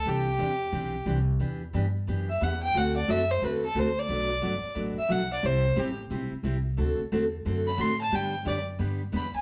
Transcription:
X:1
M:4/4
L:1/16
Q:"Swing" 1/4=178
K:Dmix
V:1 name="Fiddle"
G12 z4 | z8 z2 e2 f2 g2 | f2 d2 e2 c2 B2 A2 c2 d2- | d8 z2 e2 f2 d2 |
c4 G2 z8 z2 | z8 z2 b2 c'2 a2 | g4 d2 z6 b2 _a2 |]
V:2 name="Steel-string acoustic guitar"
[C,E,DG]2 z2 [C,E,DG] z3 [C,E,DG]2 z2 [C,E,DG] z3 | [E,B,DG]2 z2 [E,B,DG] z3 [E,B,DG]2 z2 [E,B,DG] z3 | [D,A,CFA]2 z2 [D,A,CFA] z3 [D,A,CFA]2 z2 [D,A,CFA] z3 | [B,,F,A,DF]2 z2 [B,,F,A,DF] z3 [B,,F,A,DF]2 z2 [B,,F,A,DF] z3 |
[C,G,CEG]2 z2 [C,G,CEG] z3 [C,G,CEG]2 z2 [C,G,CEG] z3 | [D,A,CFA]2 z2 [D,A,CFA] z3 [D,A,CFA]2 z2 [D,A,CFA] z3 | [D,G,B,DG]2 z2 [D,G,B,DG] z3 [D,G,B,DG]2 z2 [D,G,B,DG] z3 |]
V:3 name="Upright bass" clef=bass
C,,4 E,,4 B,,,4 C,,4 | E,,4 G,,4 F,,4 E,,4 | D,,4 F,,4 E,,4 D,,4 | B,,,4 G,,,2 z2 A,,,2 z2 B,,,4 |
C,,4 A,,,4 B,,,2 z2 C,,4 | D,,2 z2 E,,4 F,,4 A,,4 | G,,4 F,,4 G,,4 E,,2 z2 |]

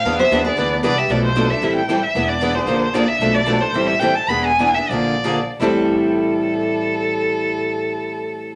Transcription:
X:1
M:4/4
L:1/8
Q:"Swing" 1/4=222
K:Am
V:1 name="Violin"
f e2 d3 d e | d c2 e2 g2 e- | e d2 c3 d e- | e d2 c2 e g a |
b ^g2 e d3 z | A8- | A8 |]
V:2 name="Steel-string acoustic guitar"
z c2 B3 ^G =G | z8 | z8 | z8 |
z8 | E8- | E8 |]
V:3 name="Steel-string acoustic guitar"
[E,B,D^G] z [E,B,DG] [B,DG] [E,B,DG] z [E,B,DG] z | [B,,F,A,DA] z [B,,F,A,DA] [A,DA] [E,G,CEA] z [E,G,CEA] z | [E,B,D^G] z [E,B,DG] [B,DG] [D,F,_B,D_A] z [D,F,B,DA] z | [B,,F,A,DA] z [B,,F,A,DA] [A,DA] [E,G,CEA] z [E,G,CEA] z |
[E,B,D^G] z [E,B,DG] [B,DG] [D,F,_B,D_A] z [D,F,B,DA] z | [A,,E,G,CEA]8- | [A,,E,G,CEA]8 |]
V:4 name="Steel-string acoustic guitar"
[E,B,D^GB] z [E,B,DGB] z [E,B,DGB] z [E,B,DGB] z | [B,,F,A,DAB] z [B,,F,A,DAB] z [E,G,CEA] z [E,G,CEA] z | [E,B,D^GB] z [E,B,DGB] z [D,F,_B,D_A] z [D,F,B,DA] z | [B,,F,A,DAB] z [B,,F,A,DAB] z [E,G,CEA] z [E,G,CEA] z |
[E,B,D^GB] z [E,B,DGB] z [D,F,_B,D_A] z [D,F,B,DA] z | [A,,E,G,CEA]8- | [A,,E,G,CEA]8 |]
V:5 name="Upright bass" clef=bass
E,,2 ^D,,2 =D,,2 C,,2 | B,,,4 A,,,4 | E,,,4 _B,,,4 | B,,,4 A,,,4 |
E,,,4 _B,,,4 | A,,,8- | A,,,8 |]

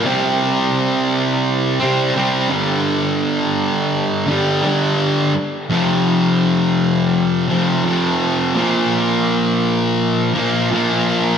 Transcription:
X:1
M:4/4
L:1/8
Q:1/4=84
K:Cdor
V:1 name="Distorted electric guitar" clef=bass
[C,G,C]4- [C,G,C] [C,G,C] [C,G,C] [G,,D,G,]- | [G,,D,G,]4 [G,,D,G,] [G,,D,G,]2 z | [F,,C,F,]4- [F,,C,F,] [F,,C,F,] [F,,C,F,]2 | [B,,F,B,]4- [B,,F,B,] [B,,F,B,] [B,,F,B,]2 |]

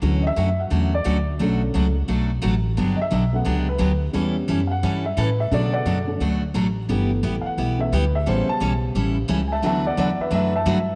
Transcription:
X:1
M:4/4
L:1/16
Q:"Swing" 1/4=175
K:D
V:1 name="Upright piano"
z2 [_e=e]2 e2 f4 d4 z2 | z16 | z2 [_e=e]2 e2 f4 B4 z2 | z6 [=f^f]4 e2 B2 e2 |
d2 [df]4 z8 z2 | z6 [=f^f]4 e2 B2 e2 | =c2 a4 z8 [e^ga]2 | [ea]2 [df]2 [df]2 [Be]2 [Be]2 [ea]6 |]
V:2 name="Upright piano"
[E,F,C]2 z12 z2 | [D,A,C]6 z8 z2 | z6 [F,A,B,]2 z8 | [G,B,C]6 z8 z2 |
[C,D,A,]6 [D,A,C]2 z8 | [E,A,B,]8- [E,A,B,]2 [E,A,B,]2 z4 | [C,G,B,]16 | [E,F,B,]16 |]
V:3 name="Steel-string acoustic guitar"
[D,F,A,CF]2 z2 [D,F,A,CF] z3 [D,F,A,CF]2 z2 [D,F,A,CF] z3 | [B,,F,A,DF]2 z2 [B,,F,A,DF] z3 [B,,F,A,DF]2 z2 [B,,F,A,DF] z3 | [D,F,B,DG]2 z2 [D,F,B,DG] z3 [D,F,B,DG]2 z2 [D,F,B,DG] z3 | [E,G,CEA]2 z2 [E,G,CEA] z3 [E,G,CEA]2 z2 [E,G,CEA] z3 |
[B,,F,A,DF]2 z2 [B,,F,A,DF] z3 [B,,F,A,DF]2 z2 [B,,F,A,DF] z3 | [G,B,EG]2 z2 [G,B,EG] z3 [G,B,EG]2 z2 [G,B,EG] z3 | [E,G,CEA]2 z2 [E,G,CEA] z3 [E,G,CEA]2 z2 [E,G,CEA] z3 | [D,F,A,DFB]2 z2 [D,F,A,DFB] z3 [D,F,A,DFB]2 z2 [D,F,A,DFB] z3 |]
V:4 name="Upright bass" clef=bass
D,,4 F,,4 E,,4 D,,4 | B,,,4 C,,4 B,,,4 A,,,4 | G,,,2 z2 B,,,4 C,,4 D,,4 | E,,4 F,,4 G,,4 A,,4 |
B,,4 F,,4 D,,4 A,,,4 | G,,,4 A,,,2 z2 B,,,4 D,,4 | A,,,2 z2 B,,,4 A,,,4 C,,4 | D,,4 E,,2 z2 F,,4 G,,4 |]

